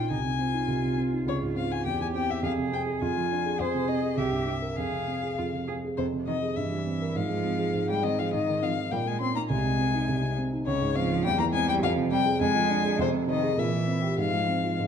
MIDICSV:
0, 0, Header, 1, 4, 480
1, 0, Start_track
1, 0, Key_signature, -4, "minor"
1, 0, Tempo, 580271
1, 90, Time_signature, 2, 2, 24, 8
1, 3450, Tempo, 600000
1, 5370, Tempo, 583658
1, 10170, Tempo, 597015
1, 12151, End_track
2, 0, Start_track
2, 0, Title_t, "Violin"
2, 0, Program_c, 0, 40
2, 93, Note_on_c, 0, 80, 57
2, 797, Note_off_c, 0, 80, 0
2, 1061, Note_on_c, 0, 73, 54
2, 1127, Note_off_c, 0, 73, 0
2, 1297, Note_on_c, 0, 77, 52
2, 1419, Note_on_c, 0, 80, 56
2, 1432, Note_off_c, 0, 77, 0
2, 1534, Note_off_c, 0, 80, 0
2, 1538, Note_on_c, 0, 79, 51
2, 1651, Note_off_c, 0, 79, 0
2, 1668, Note_on_c, 0, 80, 48
2, 1712, Note_off_c, 0, 80, 0
2, 1779, Note_on_c, 0, 79, 59
2, 1904, Note_on_c, 0, 76, 55
2, 1916, Note_off_c, 0, 79, 0
2, 2010, Note_off_c, 0, 76, 0
2, 2015, Note_on_c, 0, 77, 62
2, 2081, Note_off_c, 0, 77, 0
2, 2261, Note_on_c, 0, 79, 53
2, 2328, Note_off_c, 0, 79, 0
2, 2499, Note_on_c, 0, 80, 57
2, 2978, Note_on_c, 0, 72, 57
2, 2990, Note_off_c, 0, 80, 0
2, 3209, Note_on_c, 0, 75, 52
2, 3222, Note_off_c, 0, 72, 0
2, 3452, Note_on_c, 0, 76, 46
2, 3464, Note_off_c, 0, 75, 0
2, 3926, Note_on_c, 0, 77, 54
2, 3938, Note_off_c, 0, 76, 0
2, 4655, Note_off_c, 0, 77, 0
2, 4893, Note_on_c, 0, 72, 50
2, 4957, Note_off_c, 0, 72, 0
2, 5128, Note_on_c, 0, 75, 53
2, 5364, Note_on_c, 0, 76, 47
2, 5376, Note_off_c, 0, 75, 0
2, 5855, Note_on_c, 0, 77, 59
2, 5867, Note_off_c, 0, 76, 0
2, 6456, Note_off_c, 0, 77, 0
2, 6462, Note_on_c, 0, 79, 54
2, 6572, Note_on_c, 0, 75, 59
2, 6584, Note_off_c, 0, 79, 0
2, 6703, Note_on_c, 0, 77, 54
2, 6715, Note_off_c, 0, 75, 0
2, 6812, Note_off_c, 0, 77, 0
2, 6817, Note_on_c, 0, 75, 62
2, 7060, Note_on_c, 0, 77, 58
2, 7073, Note_off_c, 0, 75, 0
2, 7299, Note_on_c, 0, 79, 54
2, 7312, Note_off_c, 0, 77, 0
2, 7425, Note_on_c, 0, 80, 54
2, 7437, Note_off_c, 0, 79, 0
2, 7534, Note_off_c, 0, 80, 0
2, 7539, Note_on_c, 0, 84, 67
2, 7657, Note_off_c, 0, 84, 0
2, 7663, Note_on_c, 0, 82, 56
2, 7710, Note_off_c, 0, 82, 0
2, 7777, Note_on_c, 0, 80, 68
2, 8481, Note_off_c, 0, 80, 0
2, 8735, Note_on_c, 0, 73, 66
2, 8971, Note_on_c, 0, 77, 68
2, 8984, Note_off_c, 0, 73, 0
2, 9211, Note_off_c, 0, 77, 0
2, 9217, Note_on_c, 0, 79, 82
2, 9331, Note_off_c, 0, 79, 0
2, 9335, Note_on_c, 0, 82, 68
2, 9382, Note_off_c, 0, 82, 0
2, 9454, Note_on_c, 0, 80, 85
2, 9569, Note_off_c, 0, 80, 0
2, 9580, Note_on_c, 0, 79, 75
2, 9626, Note_off_c, 0, 79, 0
2, 9695, Note_on_c, 0, 77, 82
2, 9761, Note_off_c, 0, 77, 0
2, 9932, Note_on_c, 0, 79, 79
2, 10167, Note_off_c, 0, 79, 0
2, 10177, Note_on_c, 0, 80, 81
2, 10636, Note_off_c, 0, 80, 0
2, 10653, Note_on_c, 0, 72, 73
2, 10717, Note_off_c, 0, 72, 0
2, 10885, Note_on_c, 0, 75, 68
2, 11121, Note_on_c, 0, 76, 61
2, 11133, Note_off_c, 0, 75, 0
2, 11596, Note_off_c, 0, 76, 0
2, 11601, Note_on_c, 0, 77, 69
2, 12080, Note_off_c, 0, 77, 0
2, 12151, End_track
3, 0, Start_track
3, 0, Title_t, "Grand piano"
3, 0, Program_c, 1, 0
3, 0, Control_c, 1, 64, 127
3, 0, Note_on_c, 1, 34, 37
3, 0, Note_on_c, 1, 46, 28
3, 0, Note_on_c, 1, 61, 28
3, 0, Note_on_c, 1, 63, 30
3, 86, Note_on_c, 1, 36, 36
3, 90, Note_off_c, 1, 63, 0
3, 105, Control_c, 1, 64, 0
3, 107, Note_off_c, 1, 61, 0
3, 111, Note_off_c, 1, 46, 0
3, 113, Note_off_c, 1, 34, 0
3, 204, Note_on_c, 1, 48, 30
3, 228, Control_c, 1, 64, 127
3, 320, Note_on_c, 1, 60, 33
3, 399, Note_off_c, 1, 48, 0
3, 442, Note_on_c, 1, 63, 29
3, 517, Note_off_c, 1, 60, 0
3, 550, Note_off_c, 1, 36, 0
3, 562, Note_on_c, 1, 36, 36
3, 637, Note_off_c, 1, 63, 0
3, 686, Note_on_c, 1, 48, 28
3, 805, Note_on_c, 1, 60, 30
3, 880, Note_off_c, 1, 48, 0
3, 924, Note_on_c, 1, 63, 32
3, 1000, Note_off_c, 1, 60, 0
3, 1032, Note_off_c, 1, 36, 0
3, 1042, Note_on_c, 1, 37, 42
3, 1047, Note_off_c, 1, 63, 0
3, 1066, Control_c, 1, 64, 0
3, 1169, Note_on_c, 1, 44, 32
3, 1205, Control_c, 1, 64, 127
3, 1288, Note_on_c, 1, 60, 34
3, 1361, Note_off_c, 1, 44, 0
3, 1414, Note_on_c, 1, 65, 30
3, 1481, Note_off_c, 1, 60, 0
3, 1511, Note_off_c, 1, 37, 0
3, 1532, Note_off_c, 1, 65, 0
3, 1534, Note_on_c, 1, 40, 50
3, 1546, Control_c, 1, 64, 0
3, 1656, Note_on_c, 1, 52, 35
3, 1667, Control_c, 1, 64, 127
3, 1769, Note_on_c, 1, 60, 37
3, 1844, Note_off_c, 1, 52, 0
3, 1895, Note_on_c, 1, 67, 33
3, 1961, Note_off_c, 1, 60, 0
3, 1997, Note_off_c, 1, 40, 0
3, 2007, Note_on_c, 1, 41, 49
3, 2012, Note_off_c, 1, 67, 0
3, 2025, Control_c, 1, 64, 0
3, 2130, Note_on_c, 1, 48, 35
3, 2177, Control_c, 1, 64, 127
3, 2251, Note_on_c, 1, 60, 36
3, 2321, Note_off_c, 1, 48, 0
3, 2369, Note_on_c, 1, 68, 33
3, 2441, Note_off_c, 1, 60, 0
3, 2472, Note_off_c, 1, 41, 0
3, 2488, Note_off_c, 1, 68, 0
3, 2496, Note_on_c, 1, 41, 45
3, 2502, Control_c, 1, 64, 0
3, 2616, Note_on_c, 1, 53, 30
3, 2647, Control_c, 1, 64, 127
3, 2740, Note_on_c, 1, 62, 35
3, 2802, Note_off_c, 1, 53, 0
3, 2861, Note_on_c, 1, 68, 33
3, 2924, Note_off_c, 1, 62, 0
3, 2955, Note_off_c, 1, 41, 0
3, 2973, Note_off_c, 1, 68, 0
3, 2973, Note_on_c, 1, 41, 42
3, 2980, Control_c, 1, 64, 0
3, 3095, Note_on_c, 1, 48, 35
3, 3133, Control_c, 1, 64, 127
3, 3211, Note_on_c, 1, 60, 35
3, 3283, Note_off_c, 1, 48, 0
3, 3333, Note_on_c, 1, 68, 31
3, 3403, Note_off_c, 1, 60, 0
3, 3439, Note_off_c, 1, 41, 0
3, 3450, Note_on_c, 1, 36, 47
3, 3452, Note_off_c, 1, 68, 0
3, 3465, Control_c, 1, 64, 0
3, 3565, Note_on_c, 1, 43, 28
3, 3598, Control_c, 1, 64, 127
3, 3693, Note_on_c, 1, 60, 32
3, 3759, Note_off_c, 1, 43, 0
3, 3810, Note_on_c, 1, 70, 32
3, 3884, Note_off_c, 1, 60, 0
3, 3916, Note_off_c, 1, 36, 0
3, 3931, Note_off_c, 1, 70, 0
3, 3935, Note_on_c, 1, 41, 38
3, 3944, Control_c, 1, 64, 0
3, 4051, Note_on_c, 1, 48, 27
3, 4099, Control_c, 1, 64, 127
3, 4176, Note_on_c, 1, 60, 31
3, 4246, Note_off_c, 1, 48, 0
3, 4300, Note_on_c, 1, 68, 29
3, 4368, Note_off_c, 1, 60, 0
3, 4409, Note_off_c, 1, 41, 0
3, 4421, Note_on_c, 1, 41, 35
3, 4491, Note_off_c, 1, 68, 0
3, 4538, Note_on_c, 1, 48, 28
3, 4662, Note_on_c, 1, 60, 31
3, 4730, Note_off_c, 1, 48, 0
3, 4790, Note_on_c, 1, 68, 30
3, 4851, Note_off_c, 1, 60, 0
3, 4884, Note_off_c, 1, 41, 0
3, 4898, Note_on_c, 1, 41, 42
3, 4902, Note_off_c, 1, 68, 0
3, 4910, Control_c, 1, 64, 0
3, 5020, Note_on_c, 1, 48, 32
3, 5041, Control_c, 1, 64, 127
3, 5132, Note_on_c, 1, 60, 35
3, 5207, Note_off_c, 1, 48, 0
3, 5251, Note_on_c, 1, 68, 31
3, 5322, Note_off_c, 1, 60, 0
3, 5357, Note_off_c, 1, 41, 0
3, 5368, Note_on_c, 1, 43, 44
3, 5369, Note_off_c, 1, 68, 0
3, 5385, Control_c, 1, 64, 0
3, 5492, Note_on_c, 1, 55, 34
3, 5503, Control_c, 1, 64, 127
3, 5609, Note_on_c, 1, 60, 33
3, 5685, Note_off_c, 1, 55, 0
3, 5738, Note_on_c, 1, 70, 37
3, 5803, Note_off_c, 1, 60, 0
3, 5838, Note_off_c, 1, 43, 0
3, 5850, Note_on_c, 1, 44, 45
3, 5855, Note_off_c, 1, 70, 0
3, 5869, Control_c, 1, 64, 0
3, 5969, Note_on_c, 1, 56, 37
3, 5984, Control_c, 1, 64, 127
3, 6088, Note_on_c, 1, 60, 37
3, 6164, Note_off_c, 1, 56, 0
3, 6208, Note_on_c, 1, 68, 34
3, 6284, Note_off_c, 1, 60, 0
3, 6322, Note_off_c, 1, 44, 0
3, 6334, Note_on_c, 1, 44, 39
3, 6404, Note_off_c, 1, 68, 0
3, 6457, Note_on_c, 1, 56, 36
3, 6577, Note_on_c, 1, 60, 36
3, 6649, Note_off_c, 1, 56, 0
3, 6703, Note_on_c, 1, 68, 37
3, 6770, Note_off_c, 1, 60, 0
3, 6803, Note_off_c, 1, 44, 0
3, 6821, Note_off_c, 1, 68, 0
3, 6822, Note_on_c, 1, 44, 45
3, 6831, Control_c, 1, 64, 0
3, 6944, Note_on_c, 1, 51, 36
3, 6973, Control_c, 1, 64, 127
3, 7057, Note_on_c, 1, 60, 36
3, 7134, Note_off_c, 1, 51, 0
3, 7173, Note_on_c, 1, 63, 32
3, 7250, Note_off_c, 1, 60, 0
3, 7287, Note_off_c, 1, 44, 0
3, 7296, Note_off_c, 1, 63, 0
3, 7298, Note_on_c, 1, 46, 48
3, 7315, Control_c, 1, 64, 0
3, 7413, Note_on_c, 1, 58, 35
3, 7442, Control_c, 1, 64, 127
3, 7531, Note_on_c, 1, 61, 40
3, 7608, Note_off_c, 1, 58, 0
3, 7652, Note_on_c, 1, 63, 38
3, 7727, Note_off_c, 1, 61, 0
3, 7764, Note_off_c, 1, 46, 0
3, 7775, Note_off_c, 1, 63, 0
3, 7778, Note_on_c, 1, 36, 55
3, 7795, Control_c, 1, 64, 0
3, 7895, Note_on_c, 1, 48, 38
3, 7941, Control_c, 1, 64, 127
3, 8017, Note_on_c, 1, 60, 39
3, 8088, Note_off_c, 1, 48, 0
3, 8140, Note_on_c, 1, 63, 38
3, 8209, Note_off_c, 1, 60, 0
3, 8251, Note_off_c, 1, 36, 0
3, 8264, Note_on_c, 1, 36, 46
3, 8330, Note_off_c, 1, 63, 0
3, 8379, Note_on_c, 1, 48, 38
3, 8506, Note_on_c, 1, 60, 46
3, 8569, Note_off_c, 1, 48, 0
3, 8622, Note_on_c, 1, 63, 41
3, 8692, Note_off_c, 1, 60, 0
3, 8724, Note_off_c, 1, 36, 0
3, 8738, Note_off_c, 1, 63, 0
3, 8742, Note_on_c, 1, 37, 61
3, 8752, Control_c, 1, 64, 0
3, 8862, Note_on_c, 1, 44, 43
3, 8881, Control_c, 1, 64, 127
3, 8977, Note_on_c, 1, 60, 49
3, 9049, Note_off_c, 1, 44, 0
3, 9098, Note_on_c, 1, 65, 42
3, 9166, Note_off_c, 1, 60, 0
3, 9202, Note_off_c, 1, 37, 0
3, 9215, Note_off_c, 1, 65, 0
3, 9215, Note_on_c, 1, 40, 58
3, 9229, Control_c, 1, 64, 0
3, 9338, Note_on_c, 1, 52, 44
3, 9357, Control_c, 1, 64, 127
3, 9454, Note_on_c, 1, 60, 45
3, 9525, Note_off_c, 1, 52, 0
3, 9571, Note_on_c, 1, 67, 44
3, 9643, Note_off_c, 1, 60, 0
3, 9676, Note_off_c, 1, 40, 0
3, 9690, Note_off_c, 1, 67, 0
3, 9693, Note_on_c, 1, 41, 63
3, 9706, Control_c, 1, 64, 0
3, 9805, Note_on_c, 1, 48, 45
3, 9833, Control_c, 1, 64, 127
3, 9933, Note_on_c, 1, 60, 44
3, 9999, Note_off_c, 1, 48, 0
3, 10047, Note_on_c, 1, 68, 44
3, 10124, Note_off_c, 1, 60, 0
3, 10157, Note_off_c, 1, 41, 0
3, 10169, Note_off_c, 1, 68, 0
3, 10169, Note_on_c, 1, 41, 59
3, 10184, Control_c, 1, 64, 0
3, 10286, Note_on_c, 1, 53, 43
3, 10300, Control_c, 1, 64, 127
3, 10403, Note_on_c, 1, 62, 45
3, 10476, Note_off_c, 1, 53, 0
3, 10526, Note_on_c, 1, 68, 45
3, 10593, Note_off_c, 1, 62, 0
3, 10624, Note_off_c, 1, 41, 0
3, 10636, Note_on_c, 1, 41, 58
3, 10643, Note_off_c, 1, 68, 0
3, 10656, Control_c, 1, 64, 0
3, 10753, Note_on_c, 1, 48, 42
3, 10804, Control_c, 1, 64, 127
3, 10866, Note_on_c, 1, 60, 49
3, 10945, Note_off_c, 1, 48, 0
3, 10990, Note_on_c, 1, 68, 44
3, 11062, Note_off_c, 1, 60, 0
3, 11098, Note_off_c, 1, 41, 0
3, 11108, Note_on_c, 1, 46, 61
3, 11113, Note_off_c, 1, 68, 0
3, 11133, Control_c, 1, 64, 0
3, 11228, Note_on_c, 1, 58, 36
3, 11285, Control_c, 1, 64, 127
3, 11348, Note_on_c, 1, 60, 43
3, 11425, Note_off_c, 1, 58, 0
3, 11466, Note_on_c, 1, 67, 43
3, 11547, Note_off_c, 1, 60, 0
3, 11582, Note_off_c, 1, 46, 0
3, 11593, Note_on_c, 1, 44, 56
3, 11594, Note_off_c, 1, 67, 0
3, 11615, Control_c, 1, 64, 0
3, 11717, Note_on_c, 1, 56, 37
3, 11744, Control_c, 1, 64, 127
3, 11842, Note_on_c, 1, 60, 37
3, 11916, Note_off_c, 1, 56, 0
3, 11962, Note_on_c, 1, 65, 36
3, 12039, Note_off_c, 1, 60, 0
3, 12078, Note_off_c, 1, 44, 0
3, 12090, Note_on_c, 1, 44, 49
3, 12151, Note_off_c, 1, 44, 0
3, 12151, Note_off_c, 1, 65, 0
3, 12151, End_track
4, 0, Start_track
4, 0, Title_t, "Cello"
4, 0, Program_c, 2, 42
4, 84, Note_on_c, 2, 63, 35
4, 151, Note_off_c, 2, 63, 0
4, 321, Note_on_c, 2, 65, 41
4, 1501, Note_off_c, 2, 65, 0
4, 1532, Note_on_c, 2, 67, 50
4, 2005, Note_on_c, 2, 68, 49
4, 2017, Note_off_c, 2, 67, 0
4, 2495, Note_on_c, 2, 65, 43
4, 2507, Note_off_c, 2, 68, 0
4, 2959, Note_off_c, 2, 65, 0
4, 2964, Note_on_c, 2, 68, 50
4, 3439, Note_off_c, 2, 68, 0
4, 3452, Note_on_c, 2, 67, 45
4, 3683, Note_off_c, 2, 67, 0
4, 3688, Note_on_c, 2, 67, 41
4, 3752, Note_off_c, 2, 67, 0
4, 3928, Note_on_c, 2, 68, 38
4, 4357, Note_off_c, 2, 68, 0
4, 4416, Note_on_c, 2, 65, 37
4, 4480, Note_off_c, 2, 65, 0
4, 4655, Note_on_c, 2, 68, 41
4, 4719, Note_off_c, 2, 68, 0
4, 4896, Note_on_c, 2, 48, 43
4, 4960, Note_off_c, 2, 48, 0
4, 5131, Note_on_c, 2, 51, 43
4, 5195, Note_off_c, 2, 51, 0
4, 5362, Note_on_c, 2, 52, 43
4, 5856, Note_on_c, 2, 53, 52
4, 5868, Note_off_c, 2, 52, 0
4, 6451, Note_on_c, 2, 55, 47
4, 6464, Note_off_c, 2, 53, 0
4, 6576, Note_on_c, 2, 51, 44
4, 6588, Note_off_c, 2, 55, 0
4, 6691, Note_on_c, 2, 53, 50
4, 6703, Note_off_c, 2, 51, 0
4, 6818, Note_on_c, 2, 51, 48
4, 6830, Note_off_c, 2, 53, 0
4, 7059, Note_off_c, 2, 51, 0
4, 7062, Note_on_c, 2, 53, 45
4, 7128, Note_off_c, 2, 53, 0
4, 7303, Note_on_c, 2, 55, 51
4, 7350, Note_off_c, 2, 55, 0
4, 7429, Note_on_c, 2, 56, 49
4, 7538, Note_off_c, 2, 56, 0
4, 7543, Note_on_c, 2, 60, 48
4, 7590, Note_off_c, 2, 60, 0
4, 7665, Note_on_c, 2, 58, 57
4, 7712, Note_off_c, 2, 58, 0
4, 7783, Note_on_c, 2, 56, 53
4, 8484, Note_off_c, 2, 56, 0
4, 8727, Note_on_c, 2, 49, 58
4, 8953, Note_off_c, 2, 49, 0
4, 8970, Note_on_c, 2, 53, 67
4, 9212, Note_on_c, 2, 55, 68
4, 9224, Note_off_c, 2, 53, 0
4, 9310, Note_off_c, 2, 55, 0
4, 9315, Note_on_c, 2, 58, 67
4, 9366, Note_off_c, 2, 58, 0
4, 9442, Note_on_c, 2, 56, 61
4, 9569, Note_on_c, 2, 55, 68
4, 9581, Note_off_c, 2, 56, 0
4, 9688, Note_on_c, 2, 53, 70
4, 9700, Note_off_c, 2, 55, 0
4, 9923, Note_off_c, 2, 53, 0
4, 9927, Note_on_c, 2, 55, 68
4, 9993, Note_off_c, 2, 55, 0
4, 10167, Note_on_c, 2, 56, 77
4, 10638, Note_on_c, 2, 48, 66
4, 10650, Note_off_c, 2, 56, 0
4, 10870, Note_off_c, 2, 48, 0
4, 10875, Note_on_c, 2, 51, 65
4, 11109, Note_off_c, 2, 51, 0
4, 11117, Note_on_c, 2, 52, 52
4, 11588, Note_off_c, 2, 52, 0
4, 11592, Note_on_c, 2, 53, 54
4, 12076, Note_off_c, 2, 53, 0
4, 12151, End_track
0, 0, End_of_file